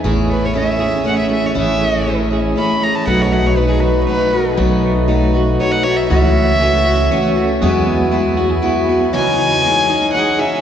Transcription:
<<
  \new Staff \with { instrumentName = "Violin" } { \time 3/4 \key a \lydian \tempo 4 = 119 r8 b'16 cis''16 e''4 fis''16 e''16 e''16 cis''16 | e''4 r4 b''8 ais''16 a''16 | fis''16 cis''16 fis''16 cis''16 b'16 gis'16 b'8 b'4 | r2 cis''16 fis''16 cis''16 e''16 |
e''2. | r2. | gis''2 fis''8 e''8 | }
  \new Staff \with { instrumentName = "Harmonium" } { \time 3/4 \key a \lydian << { cis''2.~ | cis''2. | b'2.~ | b'2. |
cis''2. | <e'' gis''>2. | <cis'' gis''>2. | } \\ { gis''2.~ | gis''2. | dis'2.~ | dis'2. |
fis'2.~ | fis'2. | dis''2. | } >> }
  \new Staff \with { instrumentName = "Clean electric guitar" } { \time 3/4 \key a \lydian <e gis'>8 a8 cis'8 gis'8 cis'8 a8 | <e gis'>8 a8 cis'8 gis'8 cis'8 a8 | <fis fis'>8 a8 dis'8 fis'8 dis'8 a8 | <fis fis'>8 a8 dis'8 fis'8 dis'8 a8 |
<e fis'>8 a8 cis'8 fis'8 cis'8 a8 | <fis gis'>8 b8 e'8 fis'16 gis'16 e'8 b8 | e8 dis'8 gis8 dis'8 gis'8 dis'8 | }
  \new Staff \with { instrumentName = "Steel-string acoustic guitar" } { \time 3/4 \key a \lydian <a cis' e' gis'>4 <a cis' e' gis'>8 <cis' e' gis'>8 <a cis' e' gis'>8 <cis' e' gis'>8 | <a cis' e' gis'>4 <a cis' e' gis'>8 <cis' e' gis'>8 <a cis' e' gis'>4 | <b, fis a dis' fis'>4 <fis a dis' fis'>4 <fis a dis' fis'>8 <a dis' fis'>8 | <b, fis a dis' fis'>4 <fis a dis' fis'>8 <a dis' fis'>8 <fis a dis' fis'>8 <a dis' fis'>8 |
<cis e a cis' fis'>4 <e a cis' fis'>8 <a cis' fis'>8 <e a cis' fis'>8 <a cis' fis'>8 | <e gis b e' fis'>4 <gis b e' fis'>8 <b e' fis'>8 <gis b e' fis'>8 <b e' fis'>8 | <cis e cis' dis' gis'>4 <e cis' dis' gis'>8 <cis' dis' gis'>8 <e cis' dis' gis'>8 <cis' dis' gis'>8 | }
  \new Staff \with { instrumentName = "Upright bass" } { \clef bass \time 3/4 \key a \lydian a,,2 r4 | a,,2 r4 | b,,2 r4 | b,,2 r4 |
cis,2 r4 | e,2 r4 | r2. | }
>>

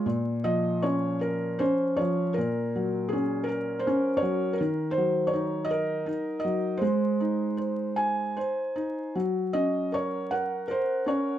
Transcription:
\new Staff \with { instrumentName = "Felt piano" } { \time 6/8 \key bes \minor \tempo 4. = 53 << { r8 ees''8 des''8 bes'8 c''8 des''8 | bes'4 aes'8 bes'8 c''8 des''8 | bes'8 c''8 des''8 ees''4 ees''8 | c''4. r4. |
r8 ees''8 des''8 bes'8 c''8 des''8 | } \\ { bes,8 f8 des'4 des'8 f8 | bes,8 ges8 des'8 bes'8 des'8 ges8 | ees8 ges8 ees'8 bes'8 ees'8 ges8 | aes8 ees'8 c''8 aes''8 c''8 ees'8 |
ges8 des'8 bes'8 ges''8 bes'8 des'8 | } >> }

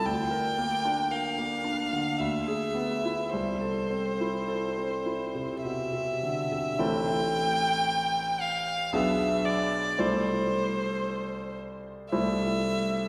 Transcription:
<<
  \new Staff \with { instrumentName = "Violin" } { \time 3/4 \key a \minor \tempo 4 = 56 g''4 f''4 e''4 | c''2 e''4 | g''4. f''8 e''8 d''8 | c''4. r8 e''4 | }
  \new Staff \with { instrumentName = "Grand piano" } { \time 3/4 \key a \minor d,16 bes'16 bes16 d'16 bes'16 bes16 d'16 d16 d,16 gis'16 b16 e'16 | c,16 a'16 c'16 e'16 a'16 c'16 e'16 c16 b,16 c16 d16 c16 | <a,, c' e' a'>2 <b,, b d' gis'>4 | <c, a e' c''>2 <c, a e' c''>4 | }
>>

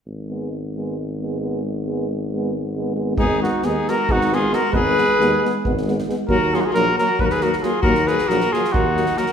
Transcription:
<<
  \new Staff \with { instrumentName = "Trumpet" } { \time 7/8 \key aes \minor \tempo 4 = 135 r2. r8 | r2. r8 | aes'8 ges'8 aes'8 bes'8 ges'8 aes'8 bes'8 | ces''2 r4. |
bes'8 aes'32 ges'32 aes'16 bes'8 bes'8 ces''32 bes'32 ces''16 bes'16. bes'32 aes'8 | bes'8 ces''8 bes'8 aes'8 ges'4 bes'8 | }
  \new Staff \with { instrumentName = "Alto saxophone" } { \time 7/8 \key aes \minor r2. r8 | r2. r8 | ees'8 ees'8 ees'8 ges'8 ees'8 f'8 ges'8 | aes'2 r4. |
ges'8 f'32 ees'32 f'16 ges'8 ges'8 ges'32 ges'32 aes'16 ges'16. ges'32 f'8 | ges'8 aes'8 ges'8 f'8 ees'4 ges'8 | }
  \new Staff \with { instrumentName = "Euphonium" } { \time 7/8 \key aes \minor r8 ces'8 r8 ces'8 r8 ces'8 ces'8 | r8 ces'8 r8 ces'8 r8 ces'8 ces'8 | ces'8 ces'8 ces'8 ces'8 ces'8 ces'8 ces'8 | ces'8 ces'8 ces'8 ces'8 ces'8 ces'8 ces'8 |
bes8 bes8 bes8 bes8 bes8 bes8 bes8 | bes8 bes8 bes8 bes8 bes8 bes8 bes8 | }
  \new Staff \with { instrumentName = "Euphonium" } { \clef bass \time 7/8 \key aes \minor r8 aes8 r8 aes8 r8 aes8 aes8 | r8 aes8 r8 aes8 r8 aes8 aes8 | aes8 aes8 aes8 aes8 aes8 aes8 aes8 | aes8 aes8 aes8 aes8 aes8 aes8 aes8 |
ges8 ges8 ges8 ges8 ges8 ges8 ges8 | ges8 ges8 ges8 ges8 ges8 ges8 ges8 | }
  \new Staff \with { instrumentName = "Tuba" } { \clef bass \time 7/8 \key aes \minor aes,,2.~ aes,,8~ | aes,,2.~ aes,,8 | aes,,4 ees,8 r8 aes,,4. | aes,,4 ees,8 r8 aes,,4. |
ees,4 bes,,8 r8 ees,4. | ees,4 bes,,8 r8 ees,4. | }
  \new DrumStaff \with { instrumentName = "Drums" } \drummode { \time 7/8 r4 r4 r4. | r4 r4 r4. | bd8 sn8 sn8 sn8 bd16 sn16 sn8 sn8 | bd8 sn8 sn8 sn8 bd16 sn16 sn16 sn16 sn8 |
bd8 sn8 sn8 sn8 bd16 sn16 sn16 sn16 sn8 | bd16 sn16 sn16 sn16 sn16 sn16 sn16 sn16 bd8 sn16 sn16 sn16 sn16 | }
>>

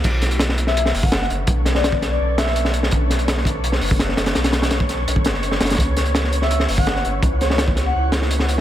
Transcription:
<<
  \new Staff \with { instrumentName = "Synth texture" } { \time 4/4 \key b \minor \tempo 4 = 167 <cis'' cis'''>1~ | <cis'' cis'''>1~ | <cis'' cis'''>1~ | <cis'' cis'''>1~ |
<cis'' cis'''>1~ | <cis'' cis'''>1 | }
  \new Staff \with { instrumentName = "Soft synth lead" } { \time 4/4 \key b \minor r4. r16 e''8 r8 fis''8 r8. | r8. d''8 r8 d''8 r16 e''8. r8. | r1 | r1 |
r4. r16 e''8 r8 fis''8 r8. | r8 cis''8 r8. fis''8 r4. r16 | }
  \new Staff \with { instrumentName = "Ambient pad" } { \time 4/4 \key b \minor << { <cis' b'>1~ | <cis' b'>1~ | <cis' b'>1~ | <cis' b'>1~ |
<cis' b'>1~ | <cis' b'>1 | } \\ { <d' a'>1~ | <d' a'>1~ | <d' a'>1~ | <d' a'>1 |
<e' g'>1~ | <e' g'>1 | } >> }
  \new Staff \with { instrumentName = "Sub bass" } { \clef bass \time 4/4 \key b \minor b,,2~ b,,8 fis,,4 fis,,8 | b,,2 b,,2 | b,,2~ b,,8 fis,,4 fis,,8 | b,,2 b,,8 fis,,4 fis,,8 |
cis,2~ cis,8 g,,4 g,,8 | cis,2 cis,2 | }
  \new DrumStaff \with { instrumentName = "Drums" } \drummode { \time 4/4 <cymc hh bd>8 <hh sn>16 hh16 <hh sn>16 sn16 hh16 sn16 hh16 sn16 hho16 bd16 <hh sn>16 sn16 hh8 | <hh bd>8 <hh sn>16 sn16 <hh sn>16 bd16 <hh sn>8 r8 <hh sn>16 sn16 hh16 sn16 hh16 sn16 | <hh bd>8 <hh sn>16 hh16 <hh sn>16 sn16 <hh bd>8 hh16 sn16 hho16 bd16 <hh sn>16 sn16 <hh sn>16 <hh sn>16 | <hh sn>16 <hh sn>16 <hh sn>16 <hh sn>16 <hh sn>16 bd16 <hh sn>8 hh16 bd16 <hh sn>16 sn16 hh16 sn16 <hh sn>32 <hh sn>32 <hh sn>32 <hh sn>32 |
<hh bd>8 <hh sn>16 hh16 <hh sn>16 sn16 hh16 sn16 hh16 sn16 hho16 bd16 <hh sn>16 sn16 hh8 | <hh bd>8 <hh sn>16 sn16 <hh sn>16 bd16 <hh sn>8 r8 <hh sn>16 sn16 hh16 sn16 hh8 | }
>>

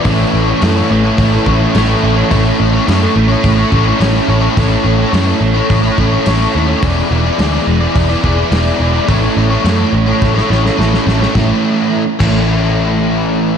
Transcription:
<<
  \new Staff \with { instrumentName = "Overdriven electric guitar" } { \time 4/4 \key a \major \tempo 4 = 106 <a cis' e' a' cis''>8 <cis' e' a' cis''>16 <e' a' cis''>16 <a cis' e' a' cis''>16 <e' a' cis''>8 <e' a' cis''>8 <e' a' cis''>16 <cis' e' a' cis''>8 <a cis' e' a' cis''>8 <cis' e' a' cis''>16 <e' a' cis''>16 | <a cis' e' a' cis''>8 <cis' e' a' cis''>16 <e' a' cis''>16 <a cis' e' a' cis''>16 <e' a' cis''>8 <e' a' cis''>8 <e' a' cis''>16 <cis' e' a' cis''>8 <a cis' e' a' cis''>8 <cis' e' a' cis''>16 <e' a' cis''>16 | <a cis' e' a' cis''>8 <cis' e' a' cis''>16 <e' a' cis''>16 <a cis' e' a' cis''>16 <e' a' cis''>8 <e' a' cis''>8 <e' a' cis''>16 <cis' e' a' cis''>8 <a cis' e' a' cis''>8 <cis' e' a' cis''>16 <e' a' cis''>16 | <e gis b e' gis' d''>8 <b e' gis' d''>16 <b e' gis' d''>16 <e gis b e' gis' d''>16 <b e' gis' d''>8 <b e' gis' d''>8 <b e' gis' d''>16 <b e' gis' d''>8 <e gis b e' gis' d''>8 <b e' gis' d''>16 <b e' gis' d''>16 |
<a cis' e' a' cis''>8 <cis' e' a' cis''>16 <e' a' cis''>16 <a cis' e' a' cis''>16 <e' a' cis''>8 <e' a' cis''>8 <e' a' cis''>16 <cis' e' a' cis''>8 <a cis' e' a' cis''>8 <cis' e' a' cis''>16 <e' a' cis''>16 | <a, e a cis' e'>16 r4 r16 <a, e a cis' e'>2~ <a, e a cis' e'>8 | }
  \new Staff \with { instrumentName = "Overdriven electric guitar" } { \time 4/4 \key a \major <a cis' e' a' cis''>16 <e' a' cis''>8 <e' a' cis''>16 <a cis' e' a' cis''>8 <cis' e' a' cis''>16 <e' a' cis''>8 <e' a' cis''>16 <cis' e' a' cis''>16 <e' a' cis''>16 <a cis' e' a' cis''>8 <cis' e' a' cis''>16 <e' a' cis''>16 | <a cis' e' a' cis''>16 <e' a' cis''>8 <e' a' cis''>16 <a cis' e' a' cis''>8 <cis' e' a' cis''>16 <e' a' cis''>8 <e' a' cis''>16 <cis' e' a' cis''>16 <e' a' cis''>16 <a cis' e' a' cis''>8 <cis' e' a' cis''>16 <e' a' cis''>16 | <a cis' e' a' cis''>16 <e' a' cis''>8 <e' a' cis''>16 <a cis' e' a' cis''>8 <cis' e' a' cis''>16 <e' a' cis''>8 <e' a' cis''>16 <cis' e' a' cis''>16 <e' a' cis''>16 <a cis' e' a' cis''>8 <cis' e' a' cis''>16 <e' a' cis''>16 | <e gis b e' gis' d''>16 <b e' gis' d''>8 <b e' gis' d''>16 <e gis b e' gis' d''>8 <b e' gis' d''>16 <b e' gis' d''>8 <b e' gis' d''>16 <b e' gis' d''>16 <b e' gis' d''>16 <e gis b e' gis' d''>8 <b e' gis' d''>16 <b e' gis' d''>16 |
<a cis' e' a' cis''>16 <e' a' cis''>8 <e' a' cis''>16 <a cis' e' a' cis''>8 <cis' e' a' cis''>16 <e' a' cis''>8 <e' a' cis''>16 <cis' e' a' cis''>16 <e' a' cis''>16 <a cis' e' a' cis''>8 <cis' e' a' cis''>16 <e' a' cis''>16 | <a, e a cis' e'>16 r4 r16 <a, e a cis' e'>2~ <a, e a cis' e'>8 | }
  \new Staff \with { instrumentName = "Overdriven electric guitar" } { \clef bass \time 4/4 \key a \major <a, e a>4 <a, e a>8 <a, e a>8 <a, e a>4 <a, e a>8 <a, e a>8 | r1 | r1 | r1 |
r1 | r1 | }
  \new Staff \with { instrumentName = "Picked electric bass" } { \clef bass \time 4/4 \key a \major a,,8 a,,8 fis,8 a,,8 a,,8 a,,8 a,,8 a,,8 | a,,8 a,,8 fis,8 a,,8 a,,8 a,,8 a,,8 a,,8 | a,,8 a,,8 fis,8 a,,8 a,,8 a,,8 a,,8 dis,8 | e,,8 e,,8 d,8 e,,8 e,,8 e,,8 e,,8 e,,8 |
a,,8 a,,8 fis,8 a,,8 a,,8 a,,8 a,,8 a,,8 | a,,8 r4 a,,2~ a,,8 | }
  \new DrumStaff \with { instrumentName = "Drums" } \drummode { \time 4/4 <hho bd>4 <hho sn>4 <hho bd>8 bd8 <hho sn>4 | <hho bd>4 <hho sn>4 <hho bd>8 bd8 <hho sn>4 | <hho bd>4 <hho sn>4 <hho bd>8 bd8 <hho sn>4 | <hho bd>4 <hho sn>4 <hho bd>8 bd8 <hho sn>4 |
<hho bd>4 <hho sn>4 <bd sn>16 sn16 sn16 sn16 sn16 sn16 sn16 sn16 | <bd sn>4 r8 <cymc bd>8 r4 r4 | }
>>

